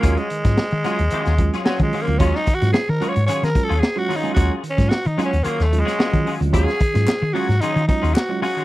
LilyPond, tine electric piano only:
\new Staff \with { instrumentName = "Tine electric piano" } { \time 4/4 \key ees \minor \tempo 4 = 111 <ges aes des' f'>16 r16 ees16 <ges aes des' f'>16 <des' f'>16 ees16 <ges aes des' f'>16 r16 ees16 r16 <ges aes des' f'>16 <des' f'>16 r16 <ges aes des' f'>16 ees16 <ges aes des' f'>16 | <ges aes des' f'>16 r16 ees16 <ges aes des' f'>16 <des' f'>16 ees16 <ges aes des' f'>16 r16 ees16 r16 <ges aes des' f'>16 <des' f'>16 r16 <ges aes des' f'>16 ees16 <ges aes des' f'>16 | <ges aes des' f'>16 r16 ees16 <ges aes des' f'>16 <des' f'>16 ees16 <ges aes des' f'>16 r16 ees16 r16 <ges aes des' f'>16 <des' f'>16 r16 <ges aes des' f'>16 ees16 <ges aes des' f'>16 | <ges aes des' f'>16 r16 ees16 <ges aes des' f'>16 <des' f'>16 ees16 <ges aes des' f'>16 r16 ees16 r16 <ges aes des' f'>16 <des' f'>16 r16 <ges aes des' f'>16 r16 ees16 | }